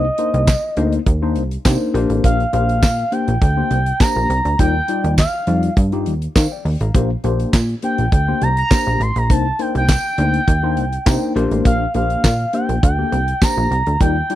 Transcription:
Already playing: C2 D#5
0.18 A#3 D4 D#4 C5, closed hi-hat
0.34 C2, closed hi-hat
0.47 kick, snare, clap, closed hi-hat, tambourine
0.77 D2 A#3 D4 D#4 C5, closed hi-hat
0.92 closed hi-hat
1.06 D#2, kick, closed hi-hat
1.22 A#3 D4 D#4 C5
1.36 C2, closed hi-hat
1.51 closed hi-hat
1.65 C3 A#3 D4 D#4 C5, kick, snare, clap, closed hi-hat, tambourine
1.94 A#1 A#3 D4 G4 C5, closed hi-hat
2.10 A1, closed hi-hat
2.24 A#1 F5, kick, closed hi-hat
2.40 closed hi-hat
2.53 A#1 A#3 D4 G4 C5 F5, closed hi-hat
2.69 closed hi-hat
2.83 A#2, kick, snare, clap, closed hi-hat, tambourine
2.99 closed hi-hat
3.12 A#3 D4 G4 C5 G5, closed hi-hat
3.28 A#1, closed hi-hat
3.42 D2 G5, kick, closed hi-hat
3.57 A#3 D4 G4 C5
3.71 C2, closed hi-hat
3.86 closed hi-hat
4.00 A#3 D4 G4 C5 A#5, kick, snare, clap, closed hi-hat, tambourine
4.16 A#1
4.30 C2, closed hi-hat
4.45 D2, closed hi-hat
4.59 D#2 G3 D#4 F4 D5 G5, kick, closed hi-hat
4.88 G3 D#4 F4 D5, closed hi-hat
5.04 D#2, closed hi-hat
5.18 F5, kick, snare, clap, closed hi-hat, tambourine
5.47 F2 G3 D#4 F4 D5, closed hi-hat
5.63 closed hi-hat
5.77 G2, kick, closed hi-hat
5.92 G3 D#4 F4 G4, closed hi-hat
6.06 D#2, closed hi-hat
6.22 closed hi-hat
6.36 D#3 C5 F5, kick, snare, clap, closed hi-hat, tambourine
6.52 D5 G5
6.65 D#2, open hi-hat
6.80 A1 F5 A#5, closed hi-hat
6.94 A#1 A#3 D4 G4 C5, kick, closed hi-hat
7.24 A#1 A#3 D4 G4 C5, closed hi-hat
7.40 closed hi-hat
7.53 A#2, kick, snare, clap, closed hi-hat, tambourine
7.69 closed hi-hat
7.82 A#3 D4 G4 C5 G5, closed hi-hat
7.98 A#1, closed hi-hat
8.12 D2 G5, kick, closed hi-hat
8.28 A#3 D4 G4 C5
8.41 C2 A#5, closed hi-hat
8.57 A#5, closed hi-hat
8.71 A#3 D4 G4 C5, kick, snare, clap, closed hi-hat, tambourine
8.87 A#1
9.00 A1 C6, closed hi-hat
9.16 A#1 A#5, closed hi-hat
9.30 C2 A#3 D4 D#4 C5 A5, kick, closed hi-hat
9.59 A#3 D4 D#4 C5 G5, closed hi-hat
9.75 C2 G5, closed hi-hat
9.88 kick, snare, clap, closed hi-hat, tambourine
10.18 D2 A#3 D4 D#4 C5, closed hi-hat
10.34 closed hi-hat
10.48 D#2, kick, closed hi-hat
10.63 A#3 D4 D#4 C5
10.77 C2 G5, closed hi-hat
10.93 closed hi-hat
11.06 C3 A#3 D4 D#4 C5 A#5, kick, snare, clap, closed hi-hat, tambourine
11.35 A#1 A#3 D4 G4 C5 C6, closed hi-hat
11.51 A1, closed hi-hat
11.65 A#1 F5, kick, closed hi-hat
11.94 A#1 A#3 D4 G4 C5 F5, closed hi-hat
12.10 closed hi-hat
12.24 A#2, kick, snare, clap, closed hi-hat, tambourine
12.40 closed hi-hat
12.53 A#3 D4 G4 C5 G5, closed hi-hat
12.69 A#1, closed hi-hat
12.83 D2 G5, kick, closed hi-hat
12.98 A#3 D4 G4 A4
13.12 C2, closed hi-hat
13.28 closed hi-hat
13.42 A#3 D4 G4 C5 A#5, kick, snare, clap, closed hi-hat, tambourine
13.57 A#1
13.71 C2, closed hi-hat
13.86 D2, closed hi-hat
14.00 D#2 G3 D#4 F4 D5 G5, kick, closed hi-hat
14.30 G3 D#4 F4 D5, closed hi-hat

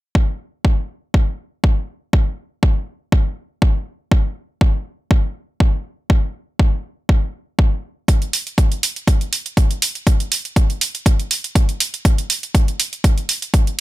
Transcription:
0.15 kick
0.65 kick
1.14 kick
1.64 kick
2.13 kick
2.63 kick
3.12 kick
3.62 kick
4.12 kick
4.61 kick
5.11 kick
5.60 kick
6.10 kick
6.59 kick
7.09 kick
7.59 kick
8.08 kick, closed hi-hat
8.22 closed hi-hat
8.33 open hi-hat
8.47 closed hi-hat
8.58 kick, closed hi-hat
8.72 closed hi-hat
8.83 open hi-hat
8.96 closed hi-hat
9.07 kick, closed hi-hat
9.21 closed hi-hat
9.33 open hi-hat
9.46 closed hi-hat
9.57 kick, closed hi-hat
9.71 closed hi-hat
9.82 open hi-hat
9.95 closed hi-hat
10.07 kick, closed hi-hat
10.20 closed hi-hat
10.32 open hi-hat
10.45 closed hi-hat
10.56 kick, closed hi-hat
10.70 closed hi-hat
10.81 open hi-hat
10.95 closed hi-hat
11.06 kick, closed hi-hat
11.20 closed hi-hat
11.31 open hi-hat
11.44 closed hi-hat
11.55 kick, closed hi-hat
11.69 closed hi-hat
11.80 open hi-hat
11.94 closed hi-hat
12.05 kick, closed hi-hat
12.18 closed hi-hat
12.30 open hi-hat
12.43 closed hi-hat
12.55 kick, closed hi-hat
12.68 closed hi-hat
12.80 open hi-hat
12.93 closed hi-hat
13.04 kick, closed hi-hat
13.18 closed hi-hat
13.29 open hi-hat
13.42 closed hi-hat
13.54 kick, closed hi-hat
13.67 closed hi-hat

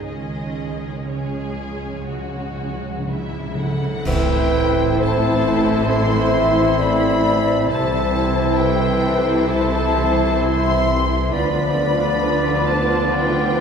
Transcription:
0.05 C#2 C#3 D#3 G#3 C#4 G#4 D#5
0.15 C#3
0.32 C#3
0.40 C#3
0.50 C#3
0.58 C#3
0.66 C#3
0.74 C#3
0.84 C#3
0.91 C#3
1.00 C#3
1.08 C#3 G#4 C#5
1.17 C#3
1.25 C#3
1.33 C#3
1.42 C#3
1.51 C#3
1.67 C#3
1.76 C#3
1.84 C#3
1.92 C#3
2.01 C#3
2.09 C#3 F#4
2.17 C#3
2.25 C#3
2.34 C#3
2.41 C#3
2.50 C#3
2.58 C#3
2.67 C#3
2.74 C#3
2.82 C#3
2.90 C#3
2.98 C#3
3.06 C#3 E4 G#4 E5
3.14 C#3
3.22 C#3
3.31 C#3
3.39 C#3
3.47 C#3
3.55 C#3 A4 F#5
3.63 C#3
3.71 C#3
3.78 C#3
3.87 C#3
3.94 C#3
4.05 A1 A2 E3 C4 E4 A4 B4 C5 E5 G5, concert bass drum, crash
4.99 E3 C4 E4 C5 E5 A5
5.88 E3 C4 E4 E5 C6
6.79 D5 B5
7.68 C2 C3 E3 C4 E4 A4 C5 E5 A5
8.57 B4 G5
9.46 E3 C4 E4 C5 E5 A5
10.41 E3 C4 E4 E5 C6
11.31 D2 D3 F3 B3 D4 F4 B4 D5 B5
12.67 C5 A5
13.12 B4 G5

